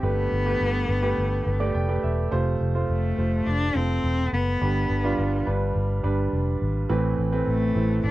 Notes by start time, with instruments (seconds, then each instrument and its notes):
0.03 fingered electric bass G1, grand piano G2 D3 A3 G4 B4, cello B3
0.32 fingered electric bass G1
0.46 grand piano A3 G4 B4
0.61 fingered electric bass G1
0.89 fingered electric bass G1
1.02 grand piano A3 G4 B4
1.18 fingered electric bass G1
1.46 fingered electric bass G1
1.60 grand piano A3 G4 D5
1.74 fingered electric bass F1, grand piano G5
1.89 grand piano A3 G4 B4
2.03 fingered electric bass E1, grand piano E5
2.31 fingered electric bass F1, grand piano C3 A3 F4 C5
2.61 fingered electric bass F1
2.75 grand piano A3 F4 C5
2.89 fingered electric bass F1, cello A3
3.18 fingered electric bass F1, grand piano A3 F4 C5
3.46 fingered electric bass F1, cello D4
3.75 fingered electric bass F1, grand piano A3 F4 A4, cello C4
4.04 fingered electric bass E1
4.33 fingered electric bass F#1, cello B3
4.61 fingered electric bass G1, grand piano G2 D3 G3 D4 B4
4.90 fingered electric bass G1
5.04 grand piano G3 D4 F4
5.18 fingered electric bass G1
5.46 fingered electric bass G1, grand piano G3 D4 B4
5.76 fingered electric bass G1
6.03 fingered electric bass G1, grand piano G3 D4 B4
6.33 fingered electric bass F1
6.62 fingered electric bass G#1
6.89 fingered electric bass A1, grand piano A2 E3 A3 C4 B4
7.18 fingered electric bass A1
7.32 grand piano A3 C4 B4
7.47 fingered electric bass A1, cello A3
7.75 fingered electric bass A1, grand piano A3 C4 E4
8.04 fingered electric bass A1, cello D4